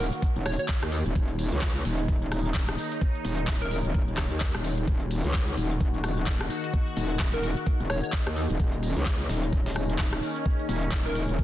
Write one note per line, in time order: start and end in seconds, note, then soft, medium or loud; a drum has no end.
0.00 0.11 D#1 loud
0.00 11.44 D#3 medium
0.00 11.44 A#3 medium
0.00 11.44 D#4 medium
0.00 1.14 F#4 loud
0.00 11.44 G#4 medium
0.00 5.12 C#5 medium
0.00 downlifter medium
0.13 closed hi-hat medium
0.22 kick loud
0.22 closed hi-hat medium
0.36 0.57 D#1 loud
0.36 closed hi-hat medium
0.46 0.54 C#5 medium
0.46 cross-stick medium
0.46 closed hi-hat medium
0.46 open hi-hat loud
0.59 0.65 C#5 medium
0.59 closed hi-hat medium
0.68 kick loud
0.68 snare loud
0.68 clap loud
0.68 closed hi-hat medium
0.82 1.04 D#2 loud
0.82 cross-stick medium
0.92 closed hi-hat medium
0.92 open hi-hat loud
1.06 1.14 D#1 loud
1.06 closed hi-hat medium
1.15 1.50 D#1 loud
1.15 4.86 D#4 loud
1.15 kick loud
1.15 closed hi-hat loud
1.29 closed hi-hat soft
1.39 closed hi-hat medium
1.39 open hi-hat loud
1.52 1.84 C#2 loud
1.52 snare medium
1.52 closed hi-hat medium
1.61 kick loud
1.61 snare loud
1.61 clap loud
1.61 closed hi-hat medium
1.76 closed hi-hat medium
1.85 2.07 D#1 loud
1.85 closed hi-hat medium
1.85 open hi-hat loud
1.99 closed hi-hat medium
2.08 2.53 D#1 loud
2.08 kick loud
2.08 closed hi-hat medium
2.22 closed hi-hat medium
2.32 cross-stick medium
2.32 closed hi-hat medium
2.32 open hi-hat loud
2.45 closed hi-hat medium
2.54 2.77 D#1 loud
2.54 kick loud
2.54 snare loud
2.54 clap loud
2.54 closed hi-hat medium
2.69 cross-stick medium
2.78 closed hi-hat medium
2.78 open hi-hat loud
2.92 closed hi-hat medium
2.92 closed hi-hat soft
3.01 kick loud
3.01 closed hi-hat medium
3.15 closed hi-hat soft
3.25 3.46 D#1 loud
3.25 closed hi-hat medium
3.25 open hi-hat loud
3.38 closed hi-hat medium
3.47 3.83 D#1 loud
3.47 kick loud
3.47 snare loud
3.47 clap loud
3.47 open hi-hat medium
3.62 3.77 A#4 medium
3.62 closed hi-hat medium
3.71 closed hi-hat medium
3.71 open hi-hat loud
3.85 3.93 D#1 loud
3.85 closed hi-hat medium
3.94 4.06 D#1 loud
3.94 kick loud
3.94 closed hi-hat medium
4.08 4.29 D#1 loud
4.08 closed hi-hat medium
4.17 kick medium
4.17 cross-stick medium
4.17 clap medium
4.17 closed hi-hat medium
4.17 open hi-hat loud
4.31 4.52 D#2 loud
4.31 closed hi-hat medium
4.40 kick loud
4.40 snare loud
4.40 clap loud
4.40 closed hi-hat medium
4.55 4.86 D#1 medium
4.55 cross-stick medium
4.64 closed hi-hat medium
4.64 open hi-hat loud
4.78 closed hi-hat medium
4.87 5.22 D#1 loud
4.87 8.59 F#4 loud
4.87 kick loud
4.87 closed hi-hat medium
5.01 closed hi-hat soft
5.09 11.44 D#5 medium
5.09 closed hi-hat medium
5.09 open hi-hat loud
5.24 5.56 C#2 medium
5.24 snare medium
5.24 closed hi-hat medium
5.34 kick loud
5.34 snare loud
5.34 clap loud
5.34 closed hi-hat medium
5.48 closed hi-hat medium
5.57 5.79 D#1 loud
5.57 closed hi-hat medium
5.57 open hi-hat medium
5.71 closed hi-hat medium
5.80 6.25 D#1 loud
5.80 kick loud
5.80 closed hi-hat medium
5.94 closed hi-hat medium
6.04 cross-stick medium
6.04 closed hi-hat medium
6.04 open hi-hat loud
6.17 closed hi-hat medium
6.27 6.49 D#1 loud
6.27 kick loud
6.27 snare loud
6.27 clap loud
6.27 closed hi-hat medium
6.41 cross-stick medium
6.50 closed hi-hat medium
6.50 open hi-hat loud
6.64 closed hi-hat soft
6.64 closed hi-hat medium
6.74 kick loud
6.74 closed hi-hat medium
6.87 closed hi-hat soft
6.97 7.18 D#1 loud
6.97 closed hi-hat medium
6.97 open hi-hat loud
7.10 closed hi-hat medium
7.20 7.55 D#1 loud
7.20 kick loud
7.20 snare loud
7.20 clap loud
7.20 open hi-hat medium
7.34 7.49 A#4 medium
7.34 closed hi-hat medium
7.43 closed hi-hat medium
7.43 open hi-hat medium
7.57 closed hi-hat medium
7.67 kick loud
7.67 closed hi-hat medium
7.80 8.01 D#1 loud
7.80 closed hi-hat medium
7.90 7.99 C#5 medium
7.90 cross-stick medium
7.90 closed hi-hat medium
7.90 open hi-hat loud
8.03 8.10 C#5 medium
8.03 closed hi-hat medium
8.13 kick loud
8.13 snare loud
8.13 clap loud
8.13 closed hi-hat medium
8.27 8.48 D#2 medium
8.27 cross-stick medium
8.36 closed hi-hat medium
8.36 open hi-hat medium
8.50 8.58 D#1 loud
8.50 closed hi-hat medium
8.60 8.94 D#1 loud
8.60 11.44 C#4 loud
8.60 kick loud
8.60 closed hi-hat medium
8.73 closed hi-hat soft
8.83 closed hi-hat medium
8.83 open hi-hat loud
8.96 9.28 C#2 loud
8.96 snare soft
8.96 closed hi-hat medium
9.06 kick loud
9.06 snare loud
9.06 clap loud
9.06 closed hi-hat medium
9.20 closed hi-hat medium
9.29 9.51 D#1 loud
9.29 snare loud
9.29 open hi-hat medium
9.43 closed hi-hat medium
9.53 9.98 D#1 loud
9.53 kick loud
9.53 closed hi-hat medium
9.66 snare loud
9.66 closed hi-hat medium
9.66 open hi-hat medium
9.76 cross-stick medium
9.76 open hi-hat loud
9.89 closed hi-hat medium
9.99 10.21 D#1 loud
9.99 kick loud
9.99 snare loud
9.99 clap loud
9.99 closed hi-hat medium
10.13 cross-stick medium
10.22 closed hi-hat medium
10.22 open hi-hat medium
10.36 closed hi-hat soft
10.36 closed hi-hat medium
10.46 kick loud
10.46 closed hi-hat medium
10.59 closed hi-hat soft
10.69 10.91 D#1 loud
10.69 closed hi-hat medium
10.69 open hi-hat loud
10.83 closed hi-hat medium
10.92 11.27 D#1 medium
10.92 kick loud
10.92 snare loud
10.92 clap loud
10.92 open hi-hat medium
11.06 11.21 A#4 medium
11.06 closed hi-hat medium
11.15 closed hi-hat medium
11.15 open hi-hat medium
11.29 11.44 D#1 loud
11.29 closed hi-hat medium
11.39 kick loud
11.39 closed hi-hat medium